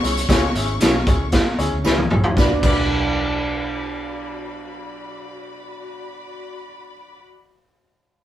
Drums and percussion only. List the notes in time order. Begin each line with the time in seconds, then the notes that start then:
0.04 closed hi-hat
0.17 closed hi-hat
0.29 kick, snare, closed hi-hat, tambourine
0.55 closed hi-hat
0.80 snare, closed hi-hat, tambourine
1.06 kick, closed hi-hat
1.32 kick, snare, closed hi-hat, tambourine
1.59 closed hi-hat
1.85 snare, tambourine
1.98 high tom
2.10 mid tom
2.24 floor tom
2.37 kick, snare, tambourine
2.63 kick, crash, tambourine